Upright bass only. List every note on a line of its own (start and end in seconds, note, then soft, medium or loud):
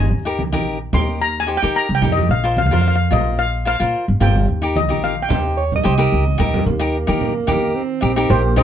0.11 0.53 D#2 medium
0.53 0.89 A#1 loud
0.93 1.55 D#2 medium
1.63 1.74 D#3 medium
1.89 2.01 C2 medium
2.02 2.27 F2 medium
2.29 2.71 A#1 medium
2.71 3.07 F2 medium
3.11 3.74 A#1 medium
3.80 3.92 A#2 medium
4.08 4.20 G1 medium
4.21 4.45 G1 loud
4.48 4.90 D#2 medium
4.90 5.26 A#1 loud
5.30 5.79 D#2 medium
5.85 6.10 C2 medium
6.12 6.37 C#2 medium
6.40 6.64 D#2 medium
6.66 7.04 D#2 loud
7.08 8.04 D#3 medium
8.02 8.27 A#1 medium
8.30 8.63 A#1 loud